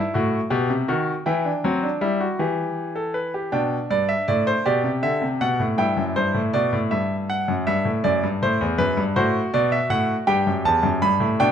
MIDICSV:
0, 0, Header, 1, 2, 480
1, 0, Start_track
1, 0, Tempo, 750939
1, 2257, Time_signature, 12, 3, 24, 8
1, 7362, End_track
2, 0, Start_track
2, 0, Title_t, "Grand piano"
2, 0, Program_c, 0, 0
2, 0, Note_on_c, 0, 64, 75
2, 0, Note_on_c, 0, 78, 72
2, 86, Note_off_c, 0, 64, 0
2, 91, Note_on_c, 0, 66, 70
2, 96, Note_on_c, 0, 45, 84
2, 240, Note_off_c, 0, 66, 0
2, 243, Note_off_c, 0, 45, 0
2, 322, Note_on_c, 0, 67, 72
2, 324, Note_on_c, 0, 47, 90
2, 443, Note_off_c, 0, 47, 0
2, 447, Note_on_c, 0, 48, 78
2, 474, Note_off_c, 0, 67, 0
2, 564, Note_on_c, 0, 66, 70
2, 565, Note_off_c, 0, 48, 0
2, 566, Note_on_c, 0, 51, 80
2, 715, Note_off_c, 0, 66, 0
2, 717, Note_off_c, 0, 51, 0
2, 790, Note_off_c, 0, 78, 0
2, 804, Note_on_c, 0, 64, 70
2, 805, Note_on_c, 0, 79, 68
2, 809, Note_on_c, 0, 52, 85
2, 924, Note_off_c, 0, 64, 0
2, 927, Note_on_c, 0, 62, 61
2, 959, Note_off_c, 0, 52, 0
2, 1046, Note_off_c, 0, 62, 0
2, 1049, Note_on_c, 0, 60, 70
2, 1052, Note_on_c, 0, 54, 85
2, 1167, Note_off_c, 0, 60, 0
2, 1170, Note_on_c, 0, 62, 66
2, 1201, Note_off_c, 0, 54, 0
2, 1286, Note_on_c, 0, 55, 86
2, 1288, Note_off_c, 0, 62, 0
2, 1288, Note_on_c, 0, 64, 69
2, 1408, Note_off_c, 0, 64, 0
2, 1409, Note_on_c, 0, 66, 63
2, 1438, Note_off_c, 0, 55, 0
2, 1528, Note_off_c, 0, 66, 0
2, 1529, Note_on_c, 0, 52, 80
2, 1533, Note_on_c, 0, 67, 59
2, 1885, Note_off_c, 0, 67, 0
2, 1889, Note_on_c, 0, 69, 61
2, 2008, Note_on_c, 0, 71, 68
2, 2009, Note_off_c, 0, 69, 0
2, 2129, Note_off_c, 0, 71, 0
2, 2137, Note_on_c, 0, 67, 62
2, 2229, Note_off_c, 0, 79, 0
2, 2233, Note_off_c, 0, 52, 0
2, 2251, Note_on_c, 0, 62, 75
2, 2252, Note_on_c, 0, 79, 67
2, 2253, Note_off_c, 0, 67, 0
2, 2254, Note_on_c, 0, 47, 71
2, 2402, Note_off_c, 0, 79, 0
2, 2404, Note_off_c, 0, 47, 0
2, 2496, Note_on_c, 0, 43, 68
2, 2497, Note_on_c, 0, 74, 84
2, 2612, Note_on_c, 0, 76, 85
2, 2614, Note_off_c, 0, 74, 0
2, 2646, Note_off_c, 0, 43, 0
2, 2732, Note_off_c, 0, 76, 0
2, 2735, Note_on_c, 0, 74, 91
2, 2737, Note_on_c, 0, 45, 74
2, 2854, Note_off_c, 0, 74, 0
2, 2857, Note_on_c, 0, 72, 92
2, 2887, Note_off_c, 0, 45, 0
2, 2955, Note_off_c, 0, 62, 0
2, 2975, Note_off_c, 0, 72, 0
2, 2976, Note_on_c, 0, 67, 73
2, 2976, Note_on_c, 0, 74, 89
2, 2979, Note_on_c, 0, 47, 73
2, 3094, Note_on_c, 0, 48, 67
2, 3096, Note_off_c, 0, 47, 0
2, 3126, Note_off_c, 0, 74, 0
2, 3213, Note_on_c, 0, 50, 79
2, 3214, Note_off_c, 0, 48, 0
2, 3214, Note_on_c, 0, 76, 87
2, 3333, Note_off_c, 0, 50, 0
2, 3335, Note_on_c, 0, 48, 66
2, 3365, Note_off_c, 0, 76, 0
2, 3454, Note_off_c, 0, 48, 0
2, 3458, Note_on_c, 0, 47, 72
2, 3458, Note_on_c, 0, 78, 87
2, 3576, Note_off_c, 0, 47, 0
2, 3576, Note_on_c, 0, 45, 72
2, 3608, Note_off_c, 0, 78, 0
2, 3678, Note_off_c, 0, 67, 0
2, 3695, Note_off_c, 0, 45, 0
2, 3695, Note_on_c, 0, 43, 69
2, 3695, Note_on_c, 0, 79, 86
2, 3698, Note_on_c, 0, 64, 74
2, 3813, Note_on_c, 0, 42, 68
2, 3814, Note_off_c, 0, 43, 0
2, 3846, Note_off_c, 0, 79, 0
2, 3933, Note_off_c, 0, 42, 0
2, 3938, Note_on_c, 0, 72, 88
2, 3940, Note_on_c, 0, 43, 73
2, 4054, Note_on_c, 0, 45, 76
2, 4057, Note_off_c, 0, 43, 0
2, 4088, Note_off_c, 0, 72, 0
2, 4174, Note_off_c, 0, 45, 0
2, 4177, Note_on_c, 0, 74, 88
2, 4180, Note_on_c, 0, 47, 72
2, 4298, Note_off_c, 0, 47, 0
2, 4299, Note_on_c, 0, 45, 70
2, 4328, Note_off_c, 0, 74, 0
2, 4417, Note_off_c, 0, 45, 0
2, 4417, Note_on_c, 0, 76, 81
2, 4419, Note_on_c, 0, 43, 70
2, 4567, Note_off_c, 0, 76, 0
2, 4663, Note_on_c, 0, 78, 87
2, 4769, Note_off_c, 0, 43, 0
2, 4782, Note_on_c, 0, 42, 69
2, 4811, Note_off_c, 0, 78, 0
2, 4898, Note_off_c, 0, 42, 0
2, 4901, Note_on_c, 0, 76, 89
2, 4902, Note_on_c, 0, 43, 77
2, 5017, Note_off_c, 0, 43, 0
2, 5018, Note_on_c, 0, 45, 68
2, 5049, Note_off_c, 0, 76, 0
2, 5135, Note_off_c, 0, 45, 0
2, 5138, Note_on_c, 0, 74, 88
2, 5140, Note_on_c, 0, 42, 76
2, 5256, Note_off_c, 0, 42, 0
2, 5263, Note_on_c, 0, 43, 67
2, 5287, Note_off_c, 0, 74, 0
2, 5377, Note_off_c, 0, 43, 0
2, 5384, Note_on_c, 0, 45, 77
2, 5386, Note_on_c, 0, 72, 91
2, 5497, Note_off_c, 0, 45, 0
2, 5503, Note_on_c, 0, 40, 80
2, 5532, Note_off_c, 0, 72, 0
2, 5613, Note_on_c, 0, 42, 73
2, 5615, Note_on_c, 0, 71, 95
2, 5616, Note_off_c, 0, 40, 0
2, 5731, Note_off_c, 0, 42, 0
2, 5735, Note_on_c, 0, 43, 78
2, 5764, Note_off_c, 0, 71, 0
2, 5829, Note_off_c, 0, 64, 0
2, 5851, Note_off_c, 0, 43, 0
2, 5856, Note_on_c, 0, 45, 78
2, 5856, Note_on_c, 0, 72, 87
2, 5857, Note_on_c, 0, 66, 82
2, 6004, Note_off_c, 0, 45, 0
2, 6004, Note_off_c, 0, 72, 0
2, 6096, Note_on_c, 0, 74, 90
2, 6097, Note_on_c, 0, 47, 83
2, 6211, Note_off_c, 0, 74, 0
2, 6213, Note_on_c, 0, 76, 86
2, 6245, Note_off_c, 0, 47, 0
2, 6327, Note_on_c, 0, 45, 78
2, 6329, Note_on_c, 0, 78, 99
2, 6330, Note_off_c, 0, 76, 0
2, 6477, Note_off_c, 0, 45, 0
2, 6479, Note_off_c, 0, 78, 0
2, 6553, Note_off_c, 0, 66, 0
2, 6565, Note_on_c, 0, 67, 80
2, 6565, Note_on_c, 0, 79, 100
2, 6567, Note_on_c, 0, 43, 80
2, 6686, Note_off_c, 0, 43, 0
2, 6690, Note_on_c, 0, 42, 66
2, 6716, Note_off_c, 0, 79, 0
2, 6807, Note_off_c, 0, 42, 0
2, 6807, Note_on_c, 0, 40, 76
2, 6810, Note_on_c, 0, 81, 98
2, 6923, Note_on_c, 0, 42, 78
2, 6925, Note_off_c, 0, 40, 0
2, 6958, Note_off_c, 0, 81, 0
2, 7042, Note_off_c, 0, 42, 0
2, 7044, Note_on_c, 0, 83, 100
2, 7045, Note_on_c, 0, 43, 80
2, 7160, Note_on_c, 0, 45, 83
2, 7163, Note_off_c, 0, 43, 0
2, 7193, Note_off_c, 0, 83, 0
2, 7263, Note_off_c, 0, 67, 0
2, 7280, Note_off_c, 0, 45, 0
2, 7284, Note_on_c, 0, 62, 82
2, 7286, Note_on_c, 0, 47, 83
2, 7286, Note_on_c, 0, 79, 102
2, 7362, Note_off_c, 0, 47, 0
2, 7362, Note_off_c, 0, 62, 0
2, 7362, Note_off_c, 0, 79, 0
2, 7362, End_track
0, 0, End_of_file